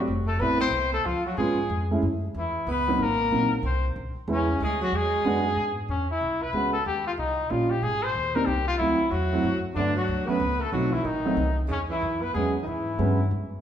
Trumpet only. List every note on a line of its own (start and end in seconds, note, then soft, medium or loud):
0.28 0.42 A4 medium
0.40 0.60 B4 loud
0.61 0.91 C5 medium
0.94 1.08 A4 medium
1.06 1.26 F4 medium
1.26 1.37 F#4 medium
1.38 1.87 G#4 medium
2.39 2.67 E4 medium
2.72 3.04 B4 medium
3.02 3.53 A#4 medium
3.66 3.89 C5 medium
4.32 4.60 C#4 medium
4.64 4.81 G#4 medium
4.83 4.98 F#4 medium
4.96 5.79 G#4 medium
5.91 6.09 C#4 medium
6.11 6.44 E4 medium
6.42 6.72 B4 medium
6.73 6.85 A4 medium
6.86 7.05 G4 medium
7.07 7.12 F4 medium
7.19 7.52 D#4 medium
7.51 7.72 F4 medium
7.70 7.85 G4 medium
7.83 8.05 G#4 loud
8.03 8.37 C5 medium
8.35 8.47 A#4 medium
8.46 8.67 G4 medium
8.67 8.73 F4 medium
8.78 9.12 E4 medium
9.11 9.64 F#4 medium
9.76 9.95 D4 medium
9.97 10.30 F#4 medium
10.28 10.63 B4 medium
10.62 10.72 A4 medium
10.73 10.95 F#4 medium
10.93 11.07 E4 medium
11.06 11.58 D#4 medium
11.71 11.80 C#4 medium
11.91 12.23 E4 medium
12.22 12.34 B4 medium
12.34 12.53 G#4 medium
12.63 12.69 D#4 soft
12.63 13.31 E4 medium